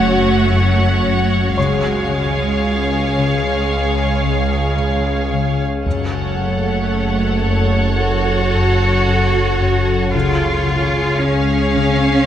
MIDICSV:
0, 0, Header, 1, 10, 480
1, 0, Start_track
1, 0, Key_signature, 3, "minor"
1, 0, Tempo, 1071429
1, 703, Time_signature, 4, 2, 24, 8
1, 5493, End_track
2, 0, Start_track
2, 0, Title_t, "Grand piano"
2, 0, Program_c, 0, 0
2, 0, Control_c, 0, 64, 127
2, 705, Note_on_c, 0, 73, 22
2, 707, Note_on_c, 0, 85, 26
2, 711, Control_c, 0, 64, 0
2, 798, Control_c, 0, 64, 127
2, 2126, Note_off_c, 0, 73, 0
2, 2127, Note_off_c, 0, 85, 0
2, 2631, Control_c, 0, 64, 0
2, 2698, Control_c, 0, 64, 127
2, 4551, Control_c, 0, 64, 0
2, 4614, Control_c, 0, 64, 127
2, 5493, End_track
3, 0, Start_track
3, 0, Title_t, "Violin section"
3, 0, Program_c, 1, 48
3, 0, Note_on_c, 1, 78, 50
3, 684, Note_off_c, 1, 78, 0
3, 704, Note_on_c, 1, 77, 33
3, 2534, Note_off_c, 1, 77, 0
3, 2619, Note_on_c, 1, 78, 30
3, 4523, Note_off_c, 1, 78, 0
3, 4544, Note_on_c, 1, 77, 41
3, 5493, Note_off_c, 1, 77, 0
3, 5493, End_track
4, 0, Start_track
4, 0, Title_t, "Ambient pad"
4, 0, Program_c, 2, 92
4, 0, Note_on_c, 2, 66, 39
4, 0, Note_on_c, 2, 73, 43
4, 0, Note_on_c, 2, 78, 45
4, 689, Note_off_c, 2, 73, 0
4, 705, Note_off_c, 2, 78, 0
4, 706, Note_off_c, 2, 66, 0
4, 706, Note_on_c, 2, 73, 39
4, 706, Note_on_c, 2, 77, 38
4, 708, Note_on_c, 2, 68, 39
4, 2607, Note_off_c, 2, 73, 0
4, 2622, Note_on_c, 2, 69, 43
4, 2622, Note_on_c, 2, 73, 37
4, 2624, Note_on_c, 2, 78, 38
4, 2625, Note_off_c, 2, 77, 0
4, 2626, Note_off_c, 2, 68, 0
4, 4524, Note_off_c, 2, 73, 0
4, 4540, Note_on_c, 2, 73, 45
4, 4541, Note_on_c, 2, 77, 46
4, 4542, Note_off_c, 2, 69, 0
4, 4542, Note_on_c, 2, 68, 44
4, 4543, Note_off_c, 2, 78, 0
4, 5493, Note_off_c, 2, 68, 0
4, 5493, Note_off_c, 2, 73, 0
4, 5493, Note_off_c, 2, 77, 0
4, 5493, End_track
5, 0, Start_track
5, 0, Title_t, "Violin section"
5, 0, Program_c, 3, 48
5, 0, Note_on_c, 3, 66, 50
5, 0, Note_on_c, 3, 73, 46
5, 686, Note_off_c, 3, 73, 0
5, 704, Note_off_c, 3, 66, 0
5, 708, Note_on_c, 3, 68, 32
5, 710, Note_on_c, 3, 73, 29
5, 2519, Note_off_c, 3, 73, 0
5, 2536, Note_off_c, 3, 68, 0
5, 2619, Note_on_c, 3, 69, 34
5, 2620, Note_on_c, 3, 73, 34
5, 4523, Note_off_c, 3, 69, 0
5, 4524, Note_off_c, 3, 73, 0
5, 4544, Note_on_c, 3, 68, 37
5, 4544, Note_on_c, 3, 73, 39
5, 5493, Note_off_c, 3, 68, 0
5, 5493, Note_off_c, 3, 73, 0
5, 5493, End_track
6, 0, Start_track
6, 0, Title_t, "Cello section"
6, 0, Program_c, 4, 48
6, 0, Note_on_c, 4, 57, 58
6, 704, Note_off_c, 4, 57, 0
6, 704, Note_on_c, 4, 56, 40
6, 2366, Note_off_c, 4, 56, 0
6, 2863, Note_on_c, 4, 57, 41
6, 3565, Note_off_c, 4, 57, 0
6, 3584, Note_on_c, 4, 66, 51
6, 4542, Note_on_c, 4, 65, 54
6, 4544, Note_off_c, 4, 66, 0
6, 5013, Note_off_c, 4, 65, 0
6, 5020, Note_on_c, 4, 61, 64
6, 5493, Note_off_c, 4, 61, 0
6, 5493, End_track
7, 0, Start_track
7, 0, Title_t, "Harp"
7, 0, Program_c, 5, 46
7, 0, Note_on_c, 5, 42, 41
7, 0, Note_on_c, 5, 54, 40
7, 220, Note_off_c, 5, 42, 0
7, 226, Note_on_c, 5, 42, 41
7, 461, Note_off_c, 5, 42, 0
7, 466, Note_on_c, 5, 42, 32
7, 707, Note_on_c, 5, 49, 40
7, 724, Note_off_c, 5, 42, 0
7, 724, Note_off_c, 5, 54, 0
7, 941, Note_off_c, 5, 49, 0
7, 946, Note_on_c, 5, 49, 26
7, 1185, Note_on_c, 5, 61, 20
7, 1418, Note_off_c, 5, 49, 0
7, 1423, Note_on_c, 5, 49, 31
7, 1661, Note_off_c, 5, 61, 0
7, 1897, Note_off_c, 5, 49, 0
7, 1903, Note_on_c, 5, 49, 22
7, 2140, Note_off_c, 5, 49, 0
7, 2145, Note_on_c, 5, 49, 28
7, 2380, Note_off_c, 5, 49, 0
7, 2386, Note_on_c, 5, 49, 19
7, 2624, Note_on_c, 5, 42, 37
7, 2643, Note_off_c, 5, 49, 0
7, 2861, Note_off_c, 5, 42, 0
7, 2867, Note_on_c, 5, 42, 29
7, 3104, Note_on_c, 5, 54, 23
7, 3337, Note_off_c, 5, 42, 0
7, 3343, Note_on_c, 5, 42, 33
7, 3577, Note_off_c, 5, 54, 0
7, 3583, Note_on_c, 5, 54, 29
7, 3820, Note_off_c, 5, 42, 0
7, 3826, Note_on_c, 5, 42, 27
7, 4058, Note_off_c, 5, 42, 0
7, 4063, Note_on_c, 5, 42, 38
7, 4297, Note_off_c, 5, 42, 0
7, 4303, Note_on_c, 5, 42, 35
7, 4543, Note_on_c, 5, 49, 46
7, 4562, Note_off_c, 5, 42, 0
7, 4562, Note_off_c, 5, 54, 0
7, 4777, Note_off_c, 5, 49, 0
7, 4782, Note_on_c, 5, 49, 34
7, 5023, Note_on_c, 5, 61, 28
7, 5259, Note_off_c, 5, 49, 0
7, 5264, Note_on_c, 5, 49, 49
7, 5493, Note_off_c, 5, 49, 0
7, 5493, Note_off_c, 5, 61, 0
7, 5493, End_track
8, 0, Start_track
8, 0, Title_t, "Double bass section"
8, 0, Program_c, 6, 48
8, 0, Note_on_c, 6, 42, 53
8, 687, Note_off_c, 6, 42, 0
8, 706, Note_on_c, 6, 37, 35
8, 2517, Note_off_c, 6, 37, 0
8, 2624, Note_on_c, 6, 42, 31
8, 4525, Note_off_c, 6, 42, 0
8, 4544, Note_on_c, 6, 37, 39
8, 5493, Note_off_c, 6, 37, 0
8, 5493, End_track
9, 0, Start_track
9, 0, Title_t, "Synth drone"
9, 0, Program_c, 7, 95
9, 0, Note_on_c, 7, 30, 70
9, 703, Note_off_c, 7, 30, 0
9, 708, Note_on_c, 7, 37, 55
9, 2625, Note_on_c, 7, 30, 54
9, 2626, Note_off_c, 7, 37, 0
9, 4537, Note_on_c, 7, 37, 56
9, 4544, Note_off_c, 7, 30, 0
9, 5493, Note_off_c, 7, 37, 0
9, 5493, End_track
10, 0, Start_track
10, 0, Title_t, "Taiko and cinematic ensemble drums"
10, 2625, Note_on_c, 9, 41, 35
10, 2670, Note_off_c, 9, 41, 0
10, 5493, End_track
0, 0, End_of_file